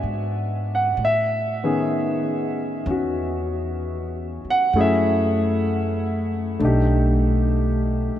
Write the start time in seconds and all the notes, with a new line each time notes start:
Already playing: G#3 B3 D4 F#4 D5 E5
0.03 G#2
0.75 F#5
0.97 A2
1.05 E5
1.64 D#3 B3 C#4 G#4
2.86 E2 C#4
2.91 F#4
4.45 muted upright bass stroke
4.50 F#5
4.73 F#2 A3 C#4 E4 G#4
4.81 E5
6.59 B1 A3 D4 D#4
6.65 G4
8.16 muted upright bass stroke